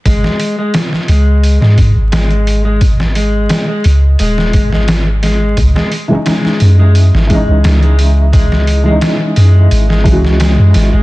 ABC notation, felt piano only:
X:1
M:4/4
L:1/16
Q:1/4=87
K:C#dor
V:1 name="Felt piano"
z16 | z16 | z3 [E,G,CD]6- [E,G,CD] [E,G,CD]6- | [E,G,CD]3 [E,G,CD]6- [E,G,CD] [E,G,CF]6 |]